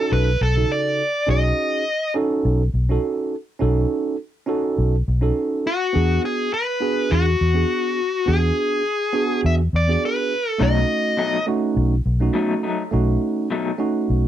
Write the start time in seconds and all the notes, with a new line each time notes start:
Already playing: C#4 D#4 F#4 A4
0.12 B1 B4
0.41 B1 A4
0.56 C#3 D#4 F#4 A4
0.72 D5
1.26 B1 C#4 D#4 F#4 G#4
1.30 D#5
2.14 C#4 D#4 F#4 A4
2.45 B1
2.74 B1
2.89 C#4 D#4 F#4 A4
3.59 B1 C#4 D#4 F#4 A4
4.46 C#4 D#4 F#4 A4
4.78 B1
5.08 B1
5.21 C#4 D#4 F#4 A4
5.67 F#4
5.93 E2 B3 D4 F#4 G#4
6.25 G#4
6.54 B4
6.80 B3 D4 F#4 G#4
7.12 E2 F#4
7.41 E2
7.54 B3 D4 F#4 G#4
8.26 E2 B3 D4 F#4 G#4
9.13 B3 D4 F#4 G#4
9.44 E2 E5
9.73 E2 D5
9.88 B3 D4 F#4 G#4
10.05 B4
10.50 A4
10.58 B1 B2 F#3 A3 C#4 D#4 F#4
10.62 D#5
11.17 B2 F#3 A3 D#4
11.46 A3 C#4 D#4 F#4
11.77 B1
12.06 B1
12.20 A3 C#4 D#4 F#4
12.34 B2 F#3 A3 D#4
12.63 F#3 A3 D#4
12.91 B1 A3 C#4 D#4 F#4
13.51 B2 F#3 A3 D#4
13.78 A3 C#4 D#4 F#4
14.10 B1